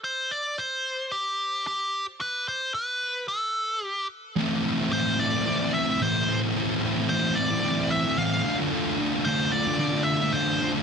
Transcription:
0.04 0.32 C5 medium
0.31 0.59 D5 medium
0.58 1.14 C5 medium
1.12 1.66 G4 medium
1.67 2.05 G4 medium
2.21 2.48 B4 medium
2.48 2.74 C5 medium
2.74 3.28 B4 medium
3.28 3.85 A4 medium
3.85 4.07 G4 medium
4.36 4.91 A2 medium
4.36 4.64 E3 loud
4.36 4.65 A3 loud
4.36 4.66 C4 medium
4.36 4.67 E4 loud
4.64 4.92 E3 medium
4.64 4.81 A3 medium
4.64 4.80 C4 medium
4.64 4.77 E4 medium
4.78 4.93 A3 medium
4.78 4.93 C4 medium
4.78 4.95 E4 medium
4.91 5.46 A2 medium
4.91 5.17 E3 loud
4.91 5.19 A3 loud
4.91 5.20 C4 loud
4.91 5.21 E4 loud
4.91 5.21 C5 medium
5.18 5.45 E3 medium
5.18 5.35 A3 medium
5.18 5.33 C4 medium
5.18 5.31 E4 medium
5.18 5.74 D5 medium
5.32 5.47 A3 medium
5.32 5.48 C4 medium
5.32 5.48 E4 medium
5.46 5.87 E3 medium
5.46 5.63 A3 medium
5.46 5.61 C4 medium
5.46 5.58 E4 medium
5.60 5.90 A3 medium
5.60 5.88 C4 medium
5.60 5.86 E4 medium
5.74 6.02 E5 loud
5.87 6.02 A3 medium
5.87 6.03 C4 medium
5.87 6.03 E4 medium
6.01 6.53 A2 medium
6.01 6.26 E3 loud
6.01 6.28 A3 loud
6.01 6.30 C4 loud
6.01 6.30 E4 loud
6.01 6.40 C5 medium
6.28 6.54 E3 medium
6.28 6.44 A3 medium
6.28 6.42 C4 medium
6.28 6.40 E4 medium
6.41 6.56 A3 medium
6.41 6.56 C4 medium
6.41 6.57 E4 medium
6.54 7.08 A2 medium
6.54 6.81 E3 loud
6.54 6.83 A3 medium
6.54 6.84 C4 medium
6.54 6.84 E4 loud
6.82 7.09 E3 medium
6.82 6.99 A3 medium
6.82 6.97 C4 medium
6.82 6.94 E4 medium
6.96 7.11 A3 medium
6.96 7.12 C4 medium
6.96 7.11 E4 medium
7.09 7.64 A2 loud
7.09 7.35 E3 medium
7.09 7.37 A3 loud
7.09 7.38 C4 loud
7.09 7.38 E4 medium
7.09 7.37 C5 medium
7.35 7.62 E3 medium
7.35 7.53 A3 medium
7.35 7.51 C4 medium
7.35 7.49 E4 medium
7.35 7.91 D5 loud
7.50 7.64 A3 medium
7.50 7.65 C4 medium
7.50 7.65 E4 medium
7.63 8.04 E3 medium
7.63 7.79 A3 medium
7.63 7.78 C4 medium
7.63 7.75 E4 medium
7.77 8.07 A3 medium
7.77 8.05 C4 medium
7.77 8.02 E4 medium
7.91 8.18 E5 loud
8.04 8.18 A3 medium
8.04 8.19 C4 medium
8.04 8.19 E4 medium
8.17 8.43 A2 loud
8.17 8.43 E3 loud
8.17 8.45 A3 loud
8.17 8.46 C4 loud
8.17 8.44 E4 loud
8.17 8.56 F5 loud
8.44 8.70 D3 loud
8.44 8.61 A3 loud
8.44 8.59 D4 loud
8.44 8.57 F4 loud
8.57 8.73 D4 medium
8.57 8.74 F4 medium
8.61 8.72 A3 medium
8.71 8.98 D3 medium
8.71 8.99 A3 loud
8.71 9.00 D4 loud
8.71 9.02 F4 loud
8.98 9.25 D3 medium
8.98 9.15 A3 medium
8.98 9.14 D4 medium
8.98 9.12 F4 medium
9.12 9.26 A3 medium
9.12 9.27 D4 medium
9.12 9.28 F4 medium
9.25 9.51 D3 medium
9.25 9.53 A3 loud
9.25 9.54 D4 loud
9.25 9.55 F4 loud
9.25 9.53 C5 medium
9.52 9.78 D3 medium
9.52 9.68 A3 medium
9.52 9.67 D4 medium
9.52 9.65 F4 medium
9.52 10.03 D5 loud
9.65 9.79 A3 medium
9.65 9.80 D4 medium
9.65 9.81 F4 medium
9.78 10.32 D3 medium
9.78 9.95 A3 medium
9.78 9.94 D4 medium
9.78 9.92 F4 medium
9.92 10.22 A3 medium
9.92 10.21 D4 medium
9.92 10.19 F4 medium
10.04 10.34 E5 loud
10.19 10.34 A3 medium
10.19 10.35 D4 medium
10.19 10.36 F4 medium
10.33 10.59 D3 medium
10.33 10.61 A3 loud
10.33 10.62 D4 loud
10.33 10.63 F4 loud
10.33 10.71 C5 medium
10.60 10.83 D3 medium
10.60 10.76 A3 medium
10.60 10.74 D4 medium
10.60 10.72 F4 medium
10.73 10.83 A3 medium
10.73 10.83 D4 medium
10.73 10.83 F4 medium

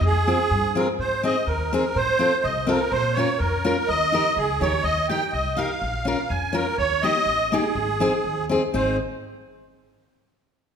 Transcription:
0.01 0.33 F2 loud
0.05 0.79 G#4 loud
0.27 0.38 C4 medium
0.27 0.38 F4 medium
0.27 0.39 G#4 medium
0.51 0.82 G2 medium
0.75 0.86 C4 medium
0.75 0.86 F4 medium
0.75 0.87 G#4 medium
0.75 0.87 A#4 medium
0.99 1.30 G#2 medium
0.99 1.22 C5 medium
1.23 1.35 C4 medium
1.23 1.35 D#4 medium
1.23 1.35 G#4 medium
1.23 1.49 D#5 loud
1.47 1.78 D#2 medium
1.47 1.97 A#4 medium
1.73 1.83 C4 medium
1.73 1.83 D#4 medium
1.73 1.84 G#4 medium
1.96 2.27 A2 medium
1.96 2.46 C5 loud
2.19 2.30 C4 medium
2.19 2.31 F4 medium
2.19 2.31 A4 medium
2.44 2.75 C2 medium
2.44 2.69 D#5 medium
2.67 2.78 C4 medium
2.67 2.79 F4 medium
2.67 2.79 A4 medium
2.67 2.92 A#4 medium
2.91 3.23 A#2 medium
2.91 3.17 C5 loud
3.13 3.28 C#4 medium
3.13 3.40 C#5 loud
3.18 3.28 F4 medium
3.18 3.29 A#4 medium
3.39 3.71 F2 medium
3.39 3.89 A#4 medium
3.65 3.75 C#4 medium
3.65 3.76 F4 medium
3.65 3.76 A#4 medium
3.88 4.20 D#2 medium
3.88 4.38 D#5 loud
4.12 4.23 D#4 medium
4.12 4.24 G4 medium
4.12 4.24 A#4 medium
4.37 4.59 C#2 medium
4.37 4.62 G#4 medium
4.60 4.83 D#2 medium
4.60 4.72 D#4 medium
4.60 4.72 G4 medium
4.60 4.73 A#4 medium
4.60 4.84 C#5 medium
4.83 5.16 D#2 medium
4.83 5.07 D#5 loud
5.09 5.21 D#4 medium
5.09 5.21 G4 medium
5.09 5.21 A#4 medium
5.09 5.32 G5 loud
5.32 5.65 C2 medium
5.32 5.58 D#5 medium
5.56 5.68 D#4 medium
5.56 5.69 G4 medium
5.56 5.69 A#4 medium
5.56 6.32 F5 medium
5.82 6.13 A#1 medium
6.05 6.17 C#4 medium
6.05 6.18 F4 medium
6.05 6.18 A#4 medium
6.29 6.62 F2 medium
6.29 6.55 G#5 medium
6.53 6.65 C#4 medium
6.53 6.65 F4 medium
6.53 6.77 A#4 medium
6.53 6.66 A#4 medium
6.78 7.10 D#2 medium
6.78 7.04 C#5 loud
7.02 7.14 A#3 medium
7.02 7.15 D#4 medium
7.02 7.15 G4 medium
7.02 7.53 D#5 loud
7.26 7.58 A1 medium
7.51 7.63 A#3 medium
7.51 7.64 D#4 medium
7.51 7.64 G4 medium
7.51 8.45 G#4 medium
7.75 8.07 G#1 medium
8.00 8.11 C4 medium
8.00 8.12 D#4 medium
8.00 8.12 G#4 medium
8.24 8.56 D#2 medium
8.49 8.60 C4 medium
8.49 8.61 D#4 medium
8.49 8.62 G#4 medium
8.74 8.97 G#1 medium
8.74 8.97 C4 medium
8.74 8.97 D#4 medium
8.74 8.97 G#4 medium
8.74 8.97 C5 medium

